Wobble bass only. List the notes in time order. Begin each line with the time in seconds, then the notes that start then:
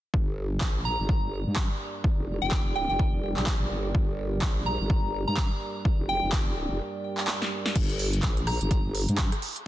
0.14 G1
0.61 A#1
0.99 G1
1.46 G2
2.18 F1
2.42 F1
2.89 F1
3.37 A#1
3.71 G1
3.95 G1
4.42 A#1
4.80 G1
5.27 G2
5.99 F1
6.23 F1
6.70 F1
7.76 G1
8.23 A#1
8.61 G1
9.08 G2